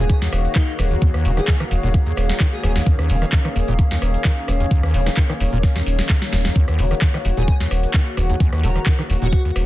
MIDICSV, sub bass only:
0, 0, Header, 1, 2, 480
1, 0, Start_track
1, 0, Key_signature, -6, "minor"
1, 0, Tempo, 461538
1, 1060, Time_signature, 4, 2, 24, 8
1, 10044, End_track
2, 0, Start_track
2, 0, Title_t, "Sub bass"
2, 0, Program_c, 0, 38
2, 0, Note_on_c, 0, 27, 84
2, 128, Note_off_c, 0, 27, 0
2, 339, Note_on_c, 0, 27, 104
2, 492, Note_off_c, 0, 27, 0
2, 820, Note_on_c, 0, 27, 87
2, 972, Note_off_c, 0, 27, 0
2, 1299, Note_on_c, 0, 27, 95
2, 1452, Note_off_c, 0, 27, 0
2, 1780, Note_on_c, 0, 27, 99
2, 1857, Note_off_c, 0, 27, 0
2, 1907, Note_on_c, 0, 27, 87
2, 2048, Note_off_c, 0, 27, 0
2, 2260, Note_on_c, 0, 27, 106
2, 2412, Note_off_c, 0, 27, 0
2, 2740, Note_on_c, 0, 27, 86
2, 2892, Note_off_c, 0, 27, 0
2, 3220, Note_on_c, 0, 27, 96
2, 3372, Note_off_c, 0, 27, 0
2, 3700, Note_on_c, 0, 27, 101
2, 3778, Note_off_c, 0, 27, 0
2, 3827, Note_on_c, 0, 27, 86
2, 3968, Note_off_c, 0, 27, 0
2, 4180, Note_on_c, 0, 27, 106
2, 4332, Note_off_c, 0, 27, 0
2, 4660, Note_on_c, 0, 27, 83
2, 4812, Note_off_c, 0, 27, 0
2, 5139, Note_on_c, 0, 27, 96
2, 5292, Note_off_c, 0, 27, 0
2, 5620, Note_on_c, 0, 27, 104
2, 5697, Note_off_c, 0, 27, 0
2, 5747, Note_on_c, 0, 27, 86
2, 5888, Note_off_c, 0, 27, 0
2, 6100, Note_on_c, 0, 27, 96
2, 6252, Note_off_c, 0, 27, 0
2, 6579, Note_on_c, 0, 27, 90
2, 6732, Note_off_c, 0, 27, 0
2, 7060, Note_on_c, 0, 27, 95
2, 7212, Note_off_c, 0, 27, 0
2, 7540, Note_on_c, 0, 27, 100
2, 7617, Note_off_c, 0, 27, 0
2, 7668, Note_on_c, 0, 27, 86
2, 7808, Note_off_c, 0, 27, 0
2, 8020, Note_on_c, 0, 27, 103
2, 8172, Note_off_c, 0, 27, 0
2, 8500, Note_on_c, 0, 27, 85
2, 8652, Note_off_c, 0, 27, 0
2, 8979, Note_on_c, 0, 27, 93
2, 9132, Note_off_c, 0, 27, 0
2, 9460, Note_on_c, 0, 27, 101
2, 9537, Note_off_c, 0, 27, 0
2, 9587, Note_on_c, 0, 27, 87
2, 9728, Note_off_c, 0, 27, 0
2, 9940, Note_on_c, 0, 27, 105
2, 10044, Note_off_c, 0, 27, 0
2, 10044, End_track
0, 0, End_of_file